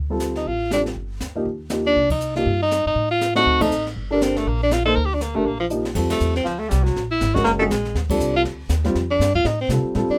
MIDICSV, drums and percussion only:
0, 0, Header, 1, 2, 480
1, 0, Start_track
1, 0, Key_signature, -2, "minor"
1, 0, Tempo, 249688
1, 1842, Time_signature, 4, 2, 24, 8
1, 19578, End_track
2, 0, Start_track
2, 0, Title_t, "Drums"
2, 380, Note_on_c, 9, 44, 46
2, 384, Note_on_c, 9, 38, 49
2, 572, Note_off_c, 9, 44, 0
2, 576, Note_off_c, 9, 38, 0
2, 683, Note_on_c, 9, 38, 37
2, 875, Note_off_c, 9, 38, 0
2, 889, Note_on_c, 9, 25, 47
2, 1369, Note_on_c, 9, 44, 53
2, 1372, Note_on_c, 9, 38, 57
2, 1561, Note_off_c, 9, 44, 0
2, 1565, Note_off_c, 9, 38, 0
2, 1653, Note_on_c, 9, 38, 37
2, 1844, Note_off_c, 9, 25, 0
2, 1844, Note_on_c, 9, 25, 45
2, 1845, Note_off_c, 9, 38, 0
2, 2313, Note_on_c, 9, 44, 53
2, 2317, Note_on_c, 9, 38, 53
2, 2505, Note_off_c, 9, 44, 0
2, 2509, Note_off_c, 9, 38, 0
2, 2797, Note_off_c, 9, 25, 0
2, 2797, Note_on_c, 9, 25, 39
2, 3263, Note_on_c, 9, 44, 58
2, 3266, Note_on_c, 9, 38, 60
2, 3455, Note_off_c, 9, 44, 0
2, 3459, Note_off_c, 9, 38, 0
2, 3762, Note_off_c, 9, 25, 0
2, 3762, Note_on_c, 9, 25, 41
2, 4034, Note_on_c, 9, 51, 56
2, 4041, Note_on_c, 9, 36, 67
2, 4226, Note_off_c, 9, 51, 0
2, 4233, Note_off_c, 9, 36, 0
2, 4236, Note_on_c, 9, 44, 49
2, 4428, Note_off_c, 9, 44, 0
2, 4531, Note_on_c, 9, 38, 36
2, 4723, Note_off_c, 9, 38, 0
2, 4738, Note_off_c, 9, 25, 0
2, 4738, Note_on_c, 9, 25, 49
2, 5213, Note_on_c, 9, 44, 60
2, 5217, Note_on_c, 9, 38, 55
2, 5405, Note_off_c, 9, 44, 0
2, 5409, Note_off_c, 9, 38, 0
2, 5692, Note_off_c, 9, 25, 0
2, 5692, Note_on_c, 9, 25, 42
2, 6172, Note_on_c, 9, 44, 53
2, 6176, Note_on_c, 9, 38, 49
2, 6364, Note_off_c, 9, 44, 0
2, 6368, Note_off_c, 9, 38, 0
2, 6451, Note_on_c, 9, 38, 45
2, 6643, Note_off_c, 9, 38, 0
2, 6662, Note_off_c, 9, 25, 0
2, 6662, Note_on_c, 9, 25, 46
2, 6938, Note_on_c, 9, 36, 67
2, 6938, Note_on_c, 9, 51, 65
2, 7130, Note_off_c, 9, 36, 0
2, 7130, Note_off_c, 9, 51, 0
2, 7141, Note_on_c, 9, 44, 54
2, 7333, Note_off_c, 9, 44, 0
2, 7432, Note_on_c, 9, 38, 33
2, 7624, Note_off_c, 9, 38, 0
2, 7629, Note_off_c, 9, 25, 0
2, 7629, Note_on_c, 9, 25, 49
2, 8100, Note_on_c, 9, 44, 56
2, 8104, Note_on_c, 9, 38, 54
2, 8292, Note_off_c, 9, 44, 0
2, 8296, Note_off_c, 9, 38, 0
2, 8389, Note_on_c, 9, 38, 39
2, 8581, Note_off_c, 9, 38, 0
2, 8586, Note_off_c, 9, 25, 0
2, 8586, Note_on_c, 9, 25, 45
2, 9056, Note_on_c, 9, 44, 55
2, 9060, Note_on_c, 9, 38, 57
2, 9249, Note_off_c, 9, 44, 0
2, 9253, Note_off_c, 9, 38, 0
2, 9530, Note_off_c, 9, 25, 0
2, 9530, Note_on_c, 9, 25, 42
2, 10012, Note_on_c, 9, 44, 51
2, 10016, Note_on_c, 9, 38, 51
2, 10204, Note_off_c, 9, 44, 0
2, 10208, Note_off_c, 9, 38, 0
2, 10493, Note_off_c, 9, 25, 0
2, 10493, Note_on_c, 9, 25, 48
2, 10958, Note_on_c, 9, 44, 53
2, 11150, Note_off_c, 9, 44, 0
2, 11248, Note_on_c, 9, 38, 51
2, 11437, Note_off_c, 9, 25, 0
2, 11437, Note_off_c, 9, 38, 0
2, 11437, Note_on_c, 9, 25, 46
2, 11437, Note_on_c, 9, 38, 39
2, 11437, Note_on_c, 9, 49, 74
2, 11440, Note_on_c, 9, 36, 65
2, 11629, Note_off_c, 9, 38, 0
2, 11629, Note_off_c, 9, 49, 0
2, 11633, Note_off_c, 9, 36, 0
2, 11724, Note_on_c, 9, 51, 68
2, 11728, Note_on_c, 9, 38, 68
2, 11916, Note_off_c, 9, 51, 0
2, 11919, Note_on_c, 9, 44, 51
2, 11920, Note_off_c, 9, 38, 0
2, 12111, Note_off_c, 9, 44, 0
2, 12221, Note_on_c, 9, 38, 38
2, 12412, Note_off_c, 9, 25, 0
2, 12412, Note_off_c, 9, 38, 0
2, 12412, Note_on_c, 9, 25, 46
2, 12412, Note_on_c, 9, 38, 41
2, 12605, Note_off_c, 9, 38, 0
2, 12894, Note_on_c, 9, 44, 62
2, 12898, Note_on_c, 9, 38, 63
2, 13087, Note_off_c, 9, 44, 0
2, 13090, Note_off_c, 9, 38, 0
2, 13191, Note_on_c, 9, 38, 32
2, 13383, Note_off_c, 9, 38, 0
2, 13385, Note_off_c, 9, 25, 0
2, 13385, Note_on_c, 9, 25, 50
2, 13385, Note_on_c, 9, 38, 44
2, 13577, Note_off_c, 9, 38, 0
2, 13854, Note_on_c, 9, 44, 46
2, 13858, Note_on_c, 9, 38, 57
2, 14046, Note_off_c, 9, 44, 0
2, 14050, Note_off_c, 9, 38, 0
2, 14130, Note_on_c, 9, 36, 59
2, 14148, Note_on_c, 9, 38, 41
2, 14322, Note_off_c, 9, 36, 0
2, 14331, Note_off_c, 9, 25, 0
2, 14331, Note_off_c, 9, 38, 0
2, 14331, Note_on_c, 9, 25, 44
2, 14331, Note_on_c, 9, 38, 42
2, 14523, Note_off_c, 9, 38, 0
2, 14817, Note_on_c, 9, 44, 56
2, 14821, Note_on_c, 9, 38, 65
2, 15009, Note_off_c, 9, 44, 0
2, 15013, Note_off_c, 9, 38, 0
2, 15093, Note_on_c, 9, 38, 41
2, 15286, Note_off_c, 9, 38, 0
2, 15291, Note_off_c, 9, 25, 0
2, 15291, Note_on_c, 9, 25, 50
2, 15291, Note_on_c, 9, 38, 46
2, 15483, Note_off_c, 9, 38, 0
2, 15565, Note_on_c, 9, 36, 78
2, 15574, Note_on_c, 9, 49, 74
2, 15757, Note_off_c, 9, 36, 0
2, 15765, Note_on_c, 9, 44, 50
2, 15766, Note_off_c, 9, 49, 0
2, 15957, Note_off_c, 9, 44, 0
2, 16247, Note_off_c, 9, 25, 0
2, 16247, Note_on_c, 9, 25, 44
2, 16247, Note_on_c, 9, 38, 43
2, 16439, Note_off_c, 9, 38, 0
2, 16711, Note_on_c, 9, 44, 69
2, 16715, Note_on_c, 9, 38, 66
2, 16903, Note_off_c, 9, 44, 0
2, 16907, Note_off_c, 9, 38, 0
2, 17002, Note_on_c, 9, 38, 37
2, 17194, Note_off_c, 9, 38, 0
2, 17211, Note_off_c, 9, 25, 0
2, 17211, Note_on_c, 9, 25, 40
2, 17211, Note_on_c, 9, 38, 43
2, 17403, Note_off_c, 9, 38, 0
2, 17700, Note_on_c, 9, 44, 59
2, 17704, Note_on_c, 9, 38, 59
2, 17893, Note_off_c, 9, 44, 0
2, 17896, Note_off_c, 9, 38, 0
2, 17968, Note_on_c, 9, 36, 57
2, 18161, Note_off_c, 9, 36, 0
2, 18164, Note_off_c, 9, 25, 0
2, 18164, Note_on_c, 9, 25, 50
2, 18164, Note_on_c, 9, 38, 45
2, 18356, Note_off_c, 9, 38, 0
2, 18638, Note_on_c, 9, 44, 54
2, 18642, Note_on_c, 9, 38, 66
2, 18830, Note_off_c, 9, 44, 0
2, 18834, Note_off_c, 9, 38, 0
2, 19121, Note_off_c, 9, 25, 0
2, 19121, Note_on_c, 9, 25, 43
2, 19121, Note_on_c, 9, 38, 44
2, 19313, Note_off_c, 9, 38, 0
2, 19578, Note_off_c, 9, 25, 0
2, 19578, End_track
0, 0, End_of_file